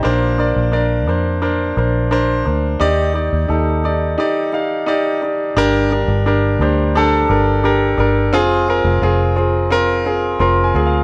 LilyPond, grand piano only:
\new Staff \with { instrumentName = "Grand piano" } { \time 4/4 \key g \minor \tempo 4 = 87 << { bes,4. r2 r8 | ees4. r2 r8 | g,4. r2 r8 | r2. \tuplet 3/2 { c'''8 aes''8 f''8 } | } \\ { <d' bes' c''>8 <d' bes' d''>8 <d' bes' d''>8 <d' bes' c''>8 <d' bes' c''>8 <d' bes' c''>8 <d' bes' c''>8 <d' bes' c''>8 | <ees' g' d''>8 <ees' g' d''>8 <ees' g' a'>8 <ees' g' d''>8 <ees' g' d''>8 <ees' g' f''>8 <ees' g' d''>8 <ees' g' d''>8 | <d' g' bes'>8 <d' g' bes'>8 <d' g' bes'>8 <d' g' c''>8 <d' g' a'>8 <d' g' bes'>8 <d' g' bes'>8 <d' g' bes'>8 | <c' f' aes'>8 <c' f' bes'>8 <c' f' aes'>8 <c' f' aes'>8 <c' f' bes'>8 <c' f' aes'>8 <c' f' bes'>8 <c' f' aes'>8 | } >> }